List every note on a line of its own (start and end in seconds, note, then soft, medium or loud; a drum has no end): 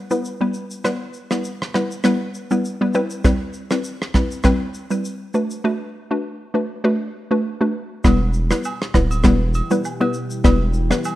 0.11 0.33 G3 medium
0.11 0.33 B3 medium
0.11 0.33 E4 medium
0.11 0.33 B4 medium
0.11 shaker medium
0.25 shaker medium
0.41 0.63 G3 medium
0.41 0.63 B3 medium
0.41 0.63 E4 medium
0.41 0.63 B4 medium
0.54 shaker medium
0.70 shaker medium
0.84 1.27 G3 medium
0.84 1.27 B3 medium
0.84 1.27 E4 medium
0.84 1.27 B4 loud
0.84 cross-stick medium
0.84 shaker medium
1.13 shaker soft
1.31 1.71 G3 medium
1.31 1.71 B3 medium
1.31 1.71 E4 medium
1.31 1.71 B4 medium
1.31 cross-stick medium
1.31 shaker medium
1.44 shaker medium
1.62 cross-stick medium
1.74 2.02 G3 medium
1.74 2.02 B3 medium
1.74 2.02 E4 medium
1.74 2.03 B4 medium
1.74 cross-stick medium
1.74 shaker soft
1.91 shaker medium
2.04 2.28 G3 loud
2.04 2.28 B3 medium
2.04 2.28 E4 medium
2.04 2.28 B4 loud
2.04 cross-stick loud
2.04 shaker medium
2.34 shaker soft
2.51 2.73 G3 medium
2.51 2.73 B3 medium
2.51 2.73 E4 medium
2.51 2.73 B4 medium
2.51 shaker medium
2.65 shaker medium
2.81 2.93 G3 medium
2.81 3.03 B3 medium
2.81 2.94 E4 medium
2.81 2.94 B4 medium
2.94 3.22 G3 medium
2.94 3.22 C4 medium
2.94 3.23 E4 medium
2.94 3.23 B4 loud
2.94 shaker medium
3.10 shaker medium
3.24 3.67 G3 medium
3.24 3.67 C4 medium
3.24 3.67 E4 medium
3.24 3.67 B4 loud
3.24 kick loud
3.24 cross-stick medium
3.24 shaker medium
3.53 shaker soft
3.71 4.11 G3 medium
3.71 4.11 C4 medium
3.71 4.11 E4 medium
3.71 4.12 B4 medium
3.71 cross-stick medium
3.71 shaker medium
3.84 shaker medium
4.02 cross-stick medium
4.14 4.42 G3 medium
4.14 4.42 C4 medium
4.14 4.42 E4 medium
4.14 4.43 B4 medium
4.14 kick medium
4.14 cross-stick medium
4.14 shaker soft
4.31 shaker medium
4.44 4.68 G3 medium
4.44 4.68 C4 medium
4.44 4.68 E4 medium
4.44 4.68 B4 loud
4.44 kick loud
4.44 cross-stick medium
4.44 shaker medium
4.74 shaker soft
4.91 5.13 G3 medium
4.91 5.13 C4 medium
4.91 5.13 E4 medium
4.91 5.13 B4 medium
4.91 shaker medium
5.05 shaker medium
5.34 5.58 A3 medium
5.34 5.58 D4 medium
5.34 5.58 F#4 medium
5.34 5.58 B4 medium
5.34 shaker medium
5.50 shaker medium
5.64 6.07 A3 medium
5.64 6.07 D4 medium
5.64 6.07 F#4 medium
5.64 6.07 B4 loud
6.11 6.51 A3 medium
6.11 6.51 D4 medium
6.11 6.51 F#4 medium
6.11 6.51 B4 medium
6.54 6.82 A3 medium
6.54 6.82 D4 medium
6.54 6.82 F#4 medium
6.54 6.82 B4 medium
6.84 7.08 A3 medium
6.84 7.08 D4 medium
6.84 7.08 F#4 medium
6.84 7.08 B4 loud
7.31 7.53 A3 medium
7.31 7.53 D4 medium
7.31 7.53 F#4 medium
7.31 7.53 B4 medium
7.61 7.83 A3 medium
7.61 7.83 D4 medium
7.61 7.83 F#4 medium
7.61 7.83 B4 medium
8.04 8.52 E1 loud
8.04 11.15 B2 medium
8.04 11.15 E3 medium
8.04 8.47 G3 medium
8.04 11.15 G3 medium
8.04 8.47 B3 medium
8.04 11.15 E4 medium
8.04 8.47 E4 medium
8.04 11.15 G4 medium
8.04 8.47 B4 loud
8.04 kick loud
8.04 cross-stick medium
8.04 high agogo medium
8.04 shaker medium
8.33 shaker soft
8.51 8.91 G3 medium
8.51 8.91 B3 medium
8.51 8.91 E4 medium
8.51 8.91 B4 medium
8.51 cross-stick loud
8.51 shaker medium
8.64 high agogo medium
8.64 low woodblock medium
8.64 shaker medium
8.82 cross-stick medium
8.94 9.26 D1 medium
8.94 9.22 G3 medium
8.94 9.22 B3 medium
8.94 9.22 E4 medium
8.94 9.23 B4 medium
8.94 kick medium
8.94 cross-stick medium
8.94 shaker soft
9.11 high agogo medium
9.11 shaker medium
9.23 9.62 E1 loud
9.23 9.48 G3 loud
9.23 9.48 B3 medium
9.23 9.48 E4 medium
9.23 9.48 B4 loud
9.23 kick medium
9.23 cross-stick medium
9.23 shaker medium
9.54 high agogo medium
9.54 shaker medium
9.71 9.93 G3 medium
9.71 9.93 B3 medium
9.71 9.93 E4 medium
9.71 9.93 B4 medium
9.71 shaker medium
9.85 low woodblock medium
9.85 shaker medium
10.00 10.23 G3 medium
10.00 10.23 B3 medium
10.00 10.23 E4 medium
10.00 10.23 B4 medium
10.00 high agogo medium
10.14 shaker medium
10.30 shaker medium
10.44 10.92 E1 loud
10.44 10.87 G3 medium
10.44 10.87 B3 medium
10.44 10.87 E4 medium
10.44 10.87 B4 loud
10.44 kick loud
10.44 cross-stick medium
10.44 high agogo medium
10.44 shaker medium
10.73 shaker soft
10.90 11.15 G3 medium
10.90 11.15 B3 medium
10.90 11.15 E4 medium
10.90 11.15 B4 medium
10.90 cross-stick loud
10.90 shaker medium
11.04 high agogo medium
11.04 low woodblock medium
11.04 shaker medium